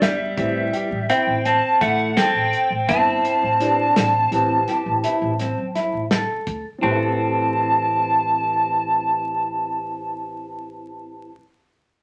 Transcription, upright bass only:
0.01 G1
0.37 A2
0.91 A1
1.27 A1
1.81 A1
2.35 A1
2.70 A1
2.89 G1
3.42 A1
3.96 A1
4.32 A1
4.86 A1
5.22 A1
5.58 F#2
5.93 A1
6.47 D2
6.82 A1

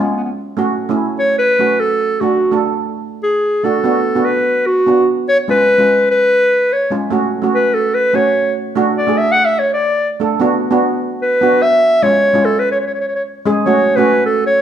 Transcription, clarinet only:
0.01 B3
0.10 B3
0.16 B3
0.24 B3
1.19 C#5
1.38 B4
1.80 A4
2.21 F#4
3.23 G#4
3.64 A4
4.25 B4
4.66 F#4
5.28 C#5
5.50 B4
6.11 B4
6.73 C#5
7.55 B4
7.74 A4
7.94 B4
8.16 C#5
8.98 D5
9.18 E5
9.32 F#5
9.45 E5
9.59 C#5
9.73 D5
11.22 B4
11.62 E5
12.03 C#5
12.45 A4
12.59 B4
12.72 C#5
12.80 C#5
12.87 C#5
12.94 C#5
13.01 C#5
13.08 C#5
13.16 C#5
13.65 C#5
13.96 B4
14.26 A4
14.46 C#5

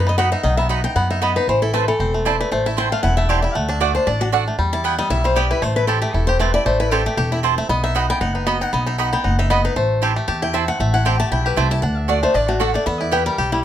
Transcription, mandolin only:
0.18 B3 F#4 D#5 B5
0.69 B3 F#4 D#5 B5
1.21 B3 F#4 D#5 B5
1.74 C4 E4 C5 A5
2.25 C4 E4 C5 A5
2.77 C4 E4 C5 A5
3.29 C4 E4 C5 A5
3.80 A3 F#4 D5 F#5
4.32 A3 F#4 D5 F#5
4.84 B3 E4 B4 G5
5.36 B3 E4 B4 G5
5.87 C4 E4 C5 A5
6.40 C4 E4 C5 A5
6.91 C4 E4 C5 A5
7.43 C4 E4 C5 A5
7.95 B3 F#4 D#5 B5
8.46 B3 F#4 D#5 B5
8.98 B3 F#4 D#5 B5
9.50 B3 F#4 D#5 B5
10.02 C4 E4 C5 A5
10.53 C4 E4 C5 A5
11.05 C4 E4 C5 A5
11.56 C4 E4 C5 A5
12.08 A3 F#4 D5 F#5
12.60 A3 F#4 D5 F#5
13.11 B3 E4 B4 G5

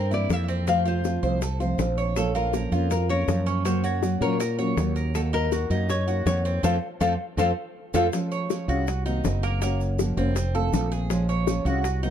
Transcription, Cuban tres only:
Already playing: C4
0.11 E4
0.48 C4
0.67 C4
0.86 F4
1.23 C5
1.42 A4
1.60 C5
1.98 C#5
2.35 F4
2.54 A#4
2.72 F4
3.09 A#4
3.46 C#4
3.65 C#4
3.84 F#4
4.22 C#5
4.40 A#4
4.59 C#5
4.96 A#4
5.33 D#4
5.52 F#4
5.71 D#4
6.08 F#4
6.45 C4
6.63 C4 F4 A4
7.00 C4 F4 A4
7.38 C4 F4 A4
7.94 C4 F4 A4
8.32 C#5
8.69 F#4
9.06 D#4
9.43 A#3
9.62 A#3
10.17 C4
10.55 A4
10.92 G#4
11.29 C#5
11.66 F#4
12.03 D#4

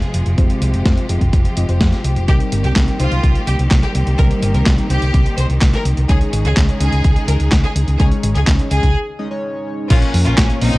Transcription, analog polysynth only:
0.38 G#3 C4 F4 C5
1.09 G#3 C4 F4 D#5
1.57 G#3 C4 F4 D#5
1.69 G#3 C4 F4 C5
2.28 G3 C4 D#4 A#4
3.00 G3 C4 D#4 C5
4.19 G3 C4 D#4 A#4
4.90 G3 C4 D#4 C5
6.09 G#3 C#4 D#4 C#5
6.81 G#3 C#4 D#4 D#5
8.00 G#3 C#4 D#4 C#5
8.71 G#3 C#4 D#4 D#5
9.19 G#3 C#4 D#4 D#5
9.31 G#3 C#4 D#4 C#5
9.90 A#3 C#4 F4 C#5
10.62 A#3 C#4 F4 D#5

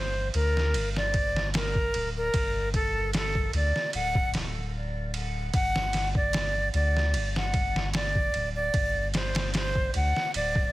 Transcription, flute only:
Already playing: C5
0.35 A#4
0.97 D5
1.55 A#4
2.17 A#4
2.75 A4
3.16 A4
3.56 D5
3.95 F#5
5.54 F#5
6.16 D5
6.75 D5
7.37 F#5
7.95 D5
8.56 D5
9.15 C5
9.56 C5
9.96 F#5
10.36 D5

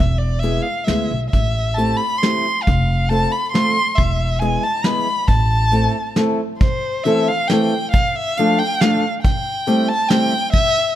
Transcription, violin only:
Already playing: E5
0.18 D5
0.40 E5
0.62 F5
0.84 E5
1.30 E5
1.75 A5
1.97 B5
2.18 C6
2.63 F5
3.09 A5
3.32 B5
3.52 C6
3.95 E5
4.39 G#5
4.63 A5
4.85 B5
5.28 A5
6.59 C5
7.04 E5
7.28 F5
7.48 G5
7.91 F5
8.10 F5
8.16 E5
8.38 F5
8.59 G5
8.81 F5
9.22 G5
9.89 A5
10.09 G5
10.53 E5

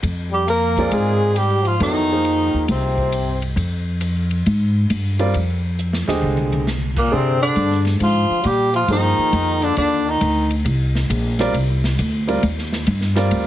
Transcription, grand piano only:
0.78 G#3 C4 F4 A#4 D5
1.80 F#3 B3 E4 A4 C#5
2.11 F3 A#3 D#4 G#4 C5
5.19 G3 C4 F4 A#4 D5
6.08 D3 G#3 G4 C5 D#5
7.12 D3 G4 G#4 C5 D5
8.90 F3 A#3 D#4 G#4 C5
11.40 G3 C4 F4 A#4 D5
12.27 G3 C4 F4 A#4 D5
13.15 G3 C4 F4 A#4 D5

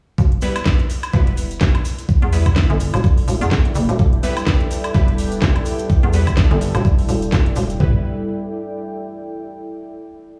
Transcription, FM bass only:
0.18 E1
1.14 E1
1.61 E1
2.22 E2
2.70 G1
2.94 E1
3.28 E1
3.41 E2
3.75 F#1
3.89 E1
3.99 E1
4.94 E1
5.42 E1
6.03 E2
6.51 G1
6.75 E1
7.09 E1
7.33 E1
7.56 E1
7.80 E1

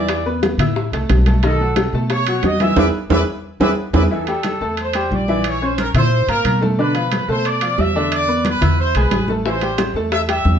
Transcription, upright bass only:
Already playing: E2
0.58 A2
0.92 C2
1.10 B1
1.93 B2
2.43 E2
2.77 E2
3.10 E2
3.60 E2
3.93 E2
4.61 E2
5.11 A#1
5.94 A#2
6.28 G#2
6.45 B2
7.28 B2
7.78 E2
8.62 E2
8.95 B1
9.11 A1
9.94 E2
10.45 E2

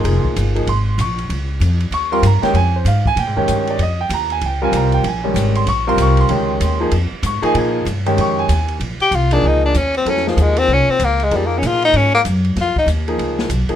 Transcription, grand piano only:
Already playing: C6
0.04 F3 A#3 D#4 G#4
0.55 F3 A#3 D#4 G#4
0.69 C6
1.01 C#6
1.94 C#6
2.12 G3 C4 F4 A#4 C6
2.26 A#5
2.42 D#3 G#3 C#4 G4 G5
2.56 G#5
2.76 C5
2.88 F5
3.07 G#5
3.19 G5
3.36 D#3 G#3 C#4 G4
3.70 D5
3.83 D#5
4.01 G5
4.14 A#5
4.32 G#5
4.46 G5
4.62 G3 C4 F4 A#4 G#5
4.76 A#5
4.94 G5
5.07 G#5
5.24 D#3 G3 G#3 C#4
5.56 C6
5.69 C#6
5.87 G3 C4 F4 A#4 C6
6.02 C#6
6.21 C6
6.29 D#3 G#3 C#4 G4
6.80 F3 A#3 D#4 G#4
7.26 C#6
7.42 F3 A#3 D#4 G#4 G#5
7.57 G#5
8.06 D#3 G#3 C#4 G4
8.21 C#6
8.39 G#5
8.52 G#5
9.32 F3 A#3 D#4 G#4
10.05 F#3 B3 E4 A4
10.26 F3 A#3 D#4 G#4
11.31 F3 A#3 D#4 G#4
13.08 F3 A#3 D#4 G#4
13.69 F3 A#3 D#4 G#4

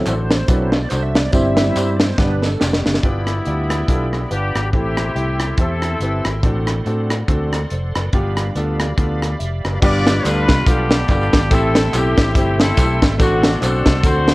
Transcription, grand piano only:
Already playing: D3
0.07 D4 F#4 A4 C5
0.48 D4 F#4 A4 B4
0.91 D4 F#4 A4 C5
1.33 G2 C4 E4 G4 C5
1.76 C4 E4 G4 C5
2.18 G2 B3 D4 G4 B4
2.61 B3 D4 G4 D5
3.03 G2 D4 F4 G4 B4
3.46 D4 F4 G4 D5
3.88 D4 F4 G4 A4
4.30 D4 F4 G4 B4
4.73 A2 C4 E4 G4 A4
5.15 C4 E4 G4 C5
5.58 C4 E4 G4 C5
6.01 C4 E4 G4 B4
6.44 A2 C4 D4 F#4 A4
6.86 C4 D4 F#4 A4
7.28 C4 D4 F#4 A4
7.71 A4 C5
7.96 B4 D5
8.13 G2 B3 D4 F4 G4
8.56 B3 D4 F4 A4
8.97 B3 D4 F4 A4
9.39 E5
9.64 B4 D5
9.82 G2 G3 B3 D4 F4 G4
10.23 G3 B3 D4 F4 A4
10.66 G3 B3 D4 F4 A4
11.09 G3 B3 D4 F4 A4
11.51 A2 A3 C4 E4 G4 A4
11.92 A3 C4 E4 G4 A4
12.34 A3 C4 E4 G4 C5
12.77 A3 C4 E4 G4 C5
13.18 A2 A3 C4 D4 F#4 A4
13.60 A3 C4 D4 F#4 C5
14.03 A3 C4 D4 F#4 A4

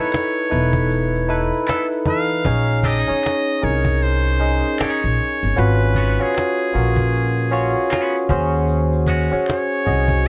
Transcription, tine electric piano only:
Already playing: D#4 E4 A4 B4
0.50 D#4 E4 A4 B4
1.28 D#4 E4 A4 B4
2.06 E3 D#4 A4 B4
2.45 C#4 D#4 G#4 C#5
3.07 C#4 D#4 G#4 C#5
3.62 C#4 D#4 G#4 A#4
4.40 C#4 D#4 G#4 D#5
5.56 C#4 F4 F#4 B4
6.19 C#4 F4 F#4 C#5
6.74 C#4 F4 F#4 A#4
7.51 C#4 F4 F#4 C#5
8.29 C#4 F#4 G#4 C5
9.31 C#4 F#4 G#4 C#5
9.85 C#4 F#4 G#4 D#5

